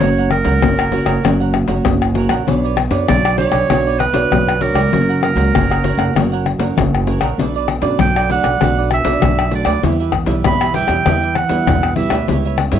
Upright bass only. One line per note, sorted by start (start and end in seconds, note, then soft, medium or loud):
0.02 0.41 F#1 medium
0.45 0.59 C#2 medium
0.63 1.02 F#1 medium
1.06 1.21 F#1 medium
1.24 1.63 F#1 medium
1.68 1.82 F#1 medium
1.86 2.25 F#1 loud
2.29 2.43 A#1 medium
2.47 2.86 B1 medium
2.91 3.05 F#2 medium
3.09 3.48 B1 medium
3.52 3.66 B1 medium
3.70 4.09 B1 medium
4.13 4.27 B1 medium
4.31 4.70 B1 medium
4.74 4.88 C#2 medium
4.92 5.32 F#1 medium
5.36 5.50 C#2 medium
5.54 5.93 F#1 medium
5.97 6.12 F#1 medium
6.15 6.54 F#1 medium
6.59 6.73 F#1 medium
6.77 7.16 F#1 medium
7.21 7.35 A#1 medium
7.38 7.77 B1 medium
7.82 7.96 F#2 medium
8.00 8.39 B1 medium
8.44 8.58 B1 medium
8.61 9.00 B1 medium
9.05 9.19 B1 medium
9.23 9.62 B1 medium
9.66 9.80 D2 medium
9.83 10.23 E2 medium
10.27 10.41 B1 loud
10.45 10.85 E2 medium
10.89 11.03 E2 loud
11.06 11.46 E2 medium
11.50 11.64 E2 medium
11.67 12.07 E2 loud
12.11 12.25 D2 medium
12.29 12.69 C#2 medium
12.73 12.79 G2 loud